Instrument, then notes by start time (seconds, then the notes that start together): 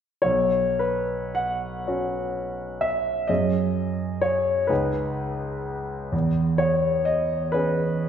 grand piano
0.22 B1 C#5
0.79 B4
1.35 F#5
1.87 C#4 F#4
2.81 E5
3.27 F#2 C#4 G#4 D#5
4.21 C#5
4.67 C#2 D#4 G#4 B4
6.12 E2
6.58 C#5
7.05 D#5
7.52 C#4 G#4 B4